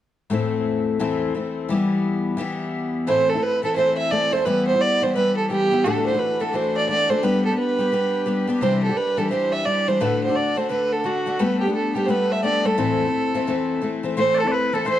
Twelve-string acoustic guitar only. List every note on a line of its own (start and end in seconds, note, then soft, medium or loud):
0.30 0.98 A2 medium
0.30 0.99 E3 medium
0.30 0.99 A3 medium
0.30 1.00 C4 medium
0.30 1.01 E4 medium
0.99 1.35 A2 medium
0.99 1.34 E3 medium
0.99 1.34 A3 medium
0.99 1.35 C4 medium
0.99 1.36 E4 medium
1.34 1.68 E3 soft
1.34 1.70 A3 soft
1.34 1.70 C4 soft
1.34 1.72 E4 medium
1.69 2.36 E3 medium
1.69 2.37 G3 medium
1.69 2.38 B3 medium
1.69 2.40 E4 medium
2.37 3.07 E3 medium
2.37 3.08 G3 medium
2.37 3.08 B3 medium
2.37 3.08 E4 medium
3.07 3.36 A2 medium
3.07 3.36 E3 medium
3.07 3.36 A3 medium
3.07 3.35 C4 medium
3.07 3.34 E4 medium
3.35 3.63 A3 soft
3.35 3.64 C4 soft
3.35 3.64 E4 soft
3.63 3.75 E3 medium
3.63 3.76 A3 soft
3.63 3.77 C4 medium
3.63 3.78 E4 medium
3.76 4.11 E3 medium
3.76 4.11 A3 medium
3.76 4.11 C4 medium
3.76 4.13 E4 medium
4.11 4.30 E3 soft
4.11 4.31 A3 medium
4.11 4.32 C4 medium
4.11 4.33 E4 medium
4.32 4.44 E3 medium
4.32 4.46 A3 medium
4.32 4.46 C4 medium
4.32 4.46 E4 medium
4.46 4.74 E3 medium
4.46 4.74 G3 medium
4.46 4.74 B3 medium
4.46 4.72 E4 medium
4.73 5.01 G3 soft
4.73 5.02 B3 soft
4.73 5.02 E4 soft
5.01 5.14 E3 medium
5.01 5.15 G3 medium
5.01 5.16 B3 medium
5.01 5.16 E4 medium
5.16 5.49 E3 medium
5.16 5.50 G3 medium
5.16 5.50 B3 medium
5.16 5.51 E4 medium
5.50 5.70 E3 soft
5.50 5.71 G3 medium
5.50 5.71 B3 soft
5.50 5.72 E4 medium
5.71 5.84 E3 medium
5.71 5.85 G3 medium
5.71 5.85 B3 medium
5.71 5.86 E4 medium
5.85 6.13 D2 medium
5.85 6.13 A2 medium
5.85 6.13 E3 medium
5.85 6.13 A3 medium
5.85 6.12 D4 medium
5.85 6.11 F#4 medium
6.13 6.39 E3 soft
6.13 6.40 A3 soft
6.13 6.40 D4 soft
6.13 6.41 F#4 soft
6.40 6.52 E3 medium
6.40 6.53 A3 medium
6.40 6.54 D4 medium
6.40 6.54 F#4 medium
6.53 6.87 E3 medium
6.53 6.88 A3 medium
6.53 6.89 D4 medium
6.53 6.89 F#4 medium
6.88 7.08 E3 soft
6.88 7.09 A3 medium
6.88 7.10 D4 soft
6.88 7.10 F#4 soft
7.09 7.22 E3 medium
7.09 7.23 A3 medium
7.09 7.23 D4 medium
7.09 7.24 F#4 medium
7.23 7.51 G3 medium
7.23 7.51 B3 medium
7.23 7.51 D4 medium
7.23 7.49 G4 medium
7.50 7.79 B3 soft
7.50 7.79 D4 soft
7.50 7.79 G4 soft
7.79 7.91 G3 medium
7.79 7.91 B3 medium
7.79 7.92 D4 soft
7.79 7.93 G4 medium
7.92 8.24 G3 medium
7.92 8.25 B3 medium
7.92 8.27 D4 medium
7.92 8.27 G4 medium
8.26 8.46 G3 medium
8.26 8.47 B3 medium
8.26 8.48 D4 medium
8.26 8.49 G4 medium
8.47 8.61 G3 medium
8.47 8.62 B3 medium
8.47 8.62 D4 medium
8.47 8.62 G4 medium
8.61 8.90 C3 medium
8.61 8.90 E3 medium
8.61 8.90 G3 medium
8.61 8.89 D4 medium
8.61 8.88 G4 medium
8.89 9.17 G3 soft
8.89 9.18 D4 soft
8.89 9.18 G4 soft
9.17 9.30 E3 medium
9.17 9.31 G3 soft
9.17 9.31 D4 medium
9.17 9.32 G4 medium
9.31 9.65 E3 medium
9.31 9.65 G3 medium
9.31 9.67 D4 medium
9.31 9.67 G4 medium
9.66 9.86 E3 soft
9.66 9.87 G3 soft
9.66 9.88 D4 soft
9.66 9.89 G4 medium
9.88 10.01 E3 medium
9.88 10.01 G3 medium
9.88 10.00 D4 medium
9.88 10.01 G4 medium
10.00 10.29 D2 medium
10.00 10.29 A2 medium
10.00 10.29 D3 medium
10.00 10.29 A3 medium
10.00 10.28 D4 medium
10.00 10.27 F#4 medium
10.28 10.55 D3 soft
10.28 10.56 A3 soft
10.28 10.57 D4 soft
10.28 10.57 F#4 soft
10.56 10.68 D3 soft
10.56 10.69 A3 medium
10.56 10.70 D4 medium
10.56 10.71 F#4 medium
10.69 11.03 D3 medium
10.69 11.05 A3 medium
10.69 11.04 D4 medium
10.69 11.05 F#4 medium
11.04 11.25 D3 medium
11.04 11.26 A3 soft
11.04 11.26 D4 medium
11.04 11.27 F#4 soft
11.26 11.39 D3 medium
11.26 11.38 A3 medium
11.26 11.40 D4 medium
11.26 11.40 F#4 medium
11.39 11.68 G3 medium
11.39 11.68 A3 medium
11.39 11.67 B3 medium
11.39 11.66 D4 medium
11.67 11.95 A3 soft
11.67 11.95 B3 soft
11.67 11.96 D4 soft
11.95 12.07 G3 soft
11.95 12.08 A3 medium
11.95 12.08 B3 medium
11.95 12.09 D4 medium
12.08 12.42 G3 medium
12.08 12.43 A3 medium
12.08 12.43 B3 medium
12.08 12.44 D4 medium
12.43 12.63 G3 medium
12.43 12.64 A3 medium
12.43 12.65 B3 medium
12.43 12.65 D4 medium
12.64 12.77 G3 soft
12.64 12.77 A3 medium
12.64 12.78 B3 medium
12.64 12.79 D4 medium
12.78 13.06 A2 medium
12.78 13.06 E3 medium
12.78 13.06 A3 medium
12.78 13.06 C4 medium
12.78 13.04 E4 medium
13.06 13.34 A3 medium
13.06 13.34 C4 soft
13.06 13.34 E4 soft
13.34 13.46 E3 medium
13.34 13.48 A3 medium
13.34 13.47 C4 medium
13.34 13.48 E4 medium
13.47 13.81 E3 medium
13.47 13.82 A3 medium
13.47 13.81 C4 medium
13.47 13.83 E4 medium
13.81 14.02 E3 soft
13.81 14.04 A3 medium
13.81 14.03 C4 medium
13.81 14.04 E4 medium
14.03 14.16 E3 medium
14.03 14.17 A3 medium
14.03 14.16 C4 medium
14.03 14.17 E4 medium
14.17 14.45 A2 medium
14.17 14.45 E3 medium
14.17 14.45 A3 medium
14.17 14.45 C4 medium
14.17 14.43 E4 medium
14.44 14.73 A3 soft
14.44 14.72 C4 soft
14.44 14.73 E4 soft
14.73 14.84 E3 soft
14.73 14.85 A3 medium
14.73 14.85 C4 medium
14.73 14.86 E4 medium
14.85 14.99 E3 medium
14.85 14.99 A3 medium
14.85 14.99 C4 medium
14.85 14.99 E4 medium